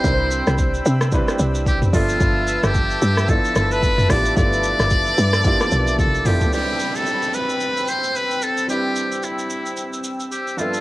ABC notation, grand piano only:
X:1
M:4/4
L:1/8
Q:"Swing 16ths" 1/4=111
K:C
V:1 name="Grand piano"
[G,CDE_Bc]3 z [G,CDE=B]2 z [F,B,DAe]- | [F,B,DAe]2 z2 [F,B,DEA]2 z [F,B,DEG] | [F,A,B,DEA]3 z [F,_B,=B,DEG]2 z [F,B,DEA] | [G,CDEB]8 |
[G,CDEB]6- [G,CDEB] [G,,F,B,DAe] |]